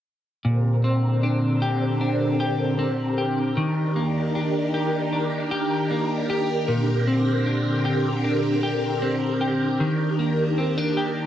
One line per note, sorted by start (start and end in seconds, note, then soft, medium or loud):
0.45 3.57 A#2 medium
0.45 3.54 D3 medium
0.45 3.54 C4 medium
0.45 11.26 G4 medium
0.45 11.26 A#4 medium
0.84 2.78 C4 soft
1.23 2.00 D4 medium
1.62 2.40 G4 soft
2.01 4.35 D4 soft
2.40 3.17 G4 medium
2.79 3.64 C4 soft
3.18 4.74 G4 soft
3.57 6.65 D#3 medium
3.57 6.68 D#3 medium
3.57 6.65 D4 medium
3.96 5.90 A#3 medium
4.35 5.12 D4 soft
4.74 5.51 G4 medium
5.13 7.10 D4 soft
5.51 6.29 G4 medium
5.91 7.07 A#3 soft
6.30 7.85 G4 medium
6.68 9.80 A#2 medium
6.68 9.77 D3 medium
6.68 9.77 C4 medium
7.07 9.01 C4 medium
7.46 8.24 D4 medium
7.85 8.63 G4 medium
8.24 10.58 D4 medium
8.63 9.40 G4 medium
9.02 9.88 C4 soft
9.41 10.97 G4 soft
9.80 11.26 D#3 medium
9.80 11.26 D4 medium
10.19 11.26 A#3 medium
10.58 10.78 C4 soft
10.78 11.26 D4 soft
10.97 11.26 G4 medium